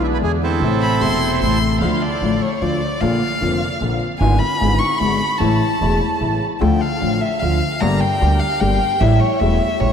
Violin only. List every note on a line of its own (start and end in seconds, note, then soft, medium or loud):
0.82 1.03 B5 medium
1.01 1.41 C6 medium
1.41 1.79 C6 medium
1.81 2.03 F5 medium
2.02 2.43 D5 medium
2.42 2.63 C#5 medium
2.62 3.02 D5 medium
3.01 4.01 F5 medium
4.18 4.40 G#5 medium
4.39 4.80 B5 medium
4.78 4.99 C#6 medium
4.98 5.39 B5 medium
5.38 6.39 A5 medium
6.60 6.82 G5 medium
6.81 7.22 F5 medium
7.20 7.41 E5 medium
7.39 7.82 F5 medium
7.80 8.01 A#5 medium
8.00 8.41 G5 medium
8.39 8.62 F5 medium
8.60 9.02 G5 medium
9.00 9.21 E5 medium
9.20 9.41 C#5 medium
9.40 9.82 E5 medium
9.80 9.93 C#5 medium